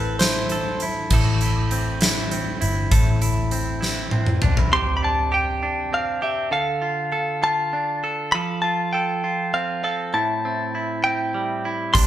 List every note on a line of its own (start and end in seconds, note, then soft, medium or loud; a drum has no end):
0.00 1.07 A1 medium
0.00 1.11 A2 medium
0.00 1.71 C4 medium
0.00 0.51 A4 medium
0.00 0.18 B4 medium
0.19 0.82 E4 medium
0.19 0.84 C5 medium
0.19 snare loud
0.19 closed hi-hat medium
0.49 1.13 A4 medium
0.49 closed hi-hat soft
0.80 1.42 E4 medium
0.80 closed hi-hat soft
1.10 2.57 A1 medium
1.10 2.90 A2 medium
1.10 2.91 A4 medium
1.10 kick loud
1.10 crash medium
1.41 2.00 E4 medium
1.41 closed hi-hat soft
1.71 2.31 C4 medium
1.71 closed hi-hat soft
2.01 2.60 E4 medium
2.01 snare loud
2.01 closed hi-hat medium
2.31 3.51 C4 soft
2.31 closed hi-hat soft
2.61 2.90 G1 medium
2.61 3.21 E4 medium
2.61 closed hi-hat soft
2.91 4.38 A1 medium
2.91 4.72 A2 medium
2.91 4.72 A4 medium
2.91 kick loud
2.91 closed hi-hat medium
3.22 3.79 E4 medium
3.22 closed hi-hat soft
3.51 4.11 C4 medium
3.51 closed hi-hat soft
3.81 4.41 E4 medium
3.81 snare medium
4.11 4.78 C4 medium
4.11 high tom medium
4.26 mid tom medium
4.42 4.71 B1 medium
4.42 4.57 D4 medium
4.42 mid tom medium
4.57 4.78 E4 medium
4.57 floor tom medium
4.72 6.51 C3 medium
4.72 5.31 G4 medium
4.72 4.96 C6 loud
4.97 5.03 B5 medium
5.02 5.62 D4 medium
5.02 5.31 A5 loud
5.32 6.21 G4 medium
5.32 5.89 G5 medium
5.63 6.59 D4 medium
5.93 6.59 C4 medium
5.93 6.23 F5 loud
6.22 6.52 G4 medium
6.22 6.51 E5 medium
6.51 8.33 D3 medium
6.51 7.12 A4 medium
6.51 7.46 F5 loud
6.82 7.42 F4 medium
7.12 8.03 A4 medium
7.42 8.39 F4 medium
7.42 8.07 A5 loud
7.73 8.39 D4 medium
8.04 8.35 A4 medium
8.32 10.14 F3 medium
8.32 8.94 A4 medium
8.32 8.61 B5 loud
8.62 9.23 F4 medium
8.62 8.91 A5 loud
8.93 9.84 A4 medium
8.93 9.53 G5 medium
9.24 10.14 F4 medium
9.54 10.45 C4 medium
9.54 9.83 F5 medium
9.84 10.20 A4 medium
9.84 10.15 F5 medium
10.14 11.95 A2 medium
10.14 10.74 E4 medium
10.14 11.07 A5 medium
10.45 11.05 C4 medium
10.75 11.64 E4 medium
11.04 12.01 C4 medium
11.04 11.68 G5 medium
11.34 12.01 G3 medium
11.65 11.95 E4 medium
11.94 12.07 C2 medium
11.94 12.07 C3 medium
11.94 12.07 D4 medium
11.94 12.07 C6 loud
11.94 kick loud
11.94 closed hi-hat loud